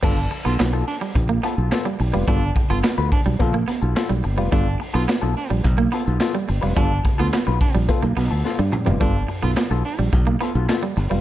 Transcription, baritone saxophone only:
X:1
M:4/4
L:1/16
Q:1/4=107
K:Gmix
V:1 name="Baritone saxophone"
D2 z F z2 D z8 z | D2 z F z2 D z8 z | D2 z F z2 D z8 z | D2 z F z2 D z8 z |
D2 z F z2 D z8 z |]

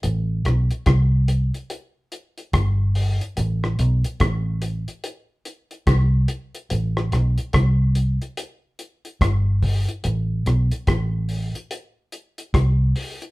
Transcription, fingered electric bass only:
X:1
M:4/4
L:1/16
Q:"Swing 16ths" 1/4=72
K:Am
V:1 name="Fingered electric bass" clef=bass
A,,,2 B,,, z C,,3 z4 z G,,,3 z | A,,,2 B,,, z A,,,3 z4 z C,,2 z2 | A,,,2 B,,, z C,,3 z4 z G,,,3 z | A,,,2 B,,, z A,,,3 z4 z C,,2 z2 |]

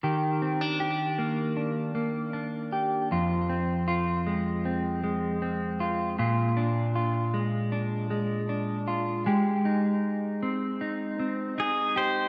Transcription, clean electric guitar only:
X:1
M:4/4
L:1/16
Q:1/4=78
K:Eb
V:1 name="Clean electric guitar"
[E,G]2 C D G2 B,2 D2 B,2 D2 G2 | [F,,F]2 C2 F2 A,2 C2 A,2 C2 F2 | [B,,F]2 D2 F2 A,2 D2 A,2 D2 F2 | [A,G]2 E4 C2 E2 C2 E2 G2 |]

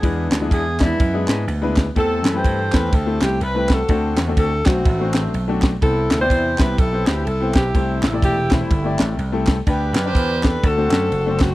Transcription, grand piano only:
X:1
M:4/4
L:1/16
Q:"Swing" 1/4=124
K:Ador
V:1 name="Grand piano"
[^G,B,DEB]2 z [G,B,DE^G]2 z [G,B,DEd]2 z [G,B,DEG]3 z [G,B,DEB]2 z | [A,CEGc]2 z [A,CEGB]2 z [A,CEGc]2 z [A,CEGc]3 z [A,CEGB]2 z | [A,CDFc]2 z [A,CDFA]2 z [A,CDFc]2 z [A,CDFc]3 z [A,CDFA]2 z | [B,CEGc]2 z [B,CEGd]2 z [B,CEGc]2 z [CEGBc]3 z [B,CEGc]2 z |
[A,CEGc]2 z [A,CEGd]2 z [A,CEGc]2 z [A,CEGd]3 z [A,CEGA]2 z | [DGB]2 z [DGB]2 z [DGA]2 z [A,CDFc]3 z [A,CDFc]2 z |]
V:2 name="Grand piano" clef=bass
E,6 z8 z2 | E,6 z8 z2 | D,6 z8 z2 | C,6 z8 z2 |
C,6 z8 z2 | D,6 z2 D,6 z2 |]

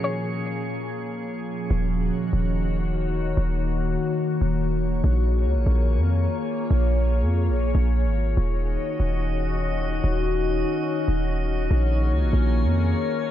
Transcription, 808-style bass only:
X:1
M:4/4
L:1/16
Q:1/4=144
K:Ebm
V:1 name="808-style bass" clef=bass
z16 | E,,,4 z2 E,,,8- E,,,2 | E,,,6 z4 E,,,6 | B,,,4 D,, B,,, B,,,3 F,,3 z4 |
B,,,4- B,,, F,,2- F,,/2 B,,,2- B,,,/2 B,,,3 A,,,3 | E,,,4 z2 E,,,8- E,,,2 | E,,,6 z4 E,,,6 | B,,,4 D,, B,,, B,,,3 F,,3 z4 |]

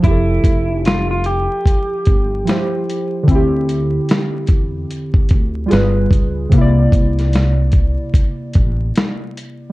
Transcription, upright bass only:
X:1
M:4/4
L:1/16
Q:"Swing 16ths" 1/4=74
K:F
V:1 name="Upright bass" clef=bass
F,,,2 F,,,4- F,,, z3 G,,,2 z4 | D,,4 z2 E,,2 z2 D,,2 G,,,2 ^C,,2 | C,,2 C,,4- C,, z3 A,,,2 z4 |]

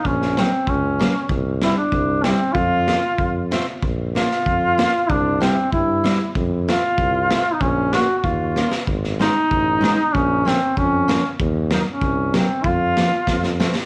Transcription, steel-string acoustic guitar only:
X:1
M:2/4
L:1/8
Q:1/4=95
K:Bbm
V:1 name="Steel-string acoustic guitar"
z [G,B,D] z [G,B,D] | z [=G,C=E] z [G,CE] | z [B,DF] z [=A,CF] | z [B,DF] z [B,DF] |
z [=G,C=E] z [G,CE] | z [=A,CF] z [A,CF] | z [B,DF] z [B,DF] | z [A,DE] z [A,DE] |
z [F,B,D] z [F,B,D] | z [G,B,E] z [G,B,E] | z [F,B,D] z [F,=A,C] |]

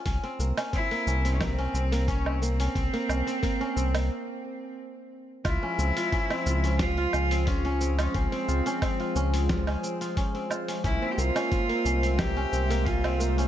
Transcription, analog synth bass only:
X:1
M:4/4
L:1/8
Q:"Swing 16ths" 1/4=89
K:none
V:1 name="Analog synth bass" clef=bass
C,, C,, z C,,2 C,,3 | C,, C,, z C,, z4 | _D,, D,, z D,,2 D,,3 | _D,, D,, z D,,2 z3 |
C,, C,, z C,,2 C,,3 |]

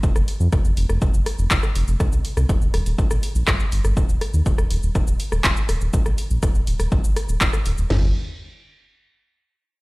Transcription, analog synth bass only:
X:1
M:4/4
L:1/16
Q:1/4=122
K:Eblyd
V:1 name="Analog synth bass" clef=bass
F,,, F,,, z F,, F,,, F,,, F,,, F,,, F,,, F,,, z F,,, F,,, z F,,, F,,, | C,, C,, z C,, E,,, E,,, E,,, E,,, B,,, B,,, z B,,, G,,, z G,,, G,,, | E,,, E,,, z E,, E,,, E,,, E,,, E,,, E,,, E,,, z E,,, E,,, z E,,, E,,, | B,,, B,,, z B,,, E,,, E,,, E,,, E,,, G,,, G,,, z E,,, E,,, z E,,, E,,, |
G,,,2 z12 z2 |]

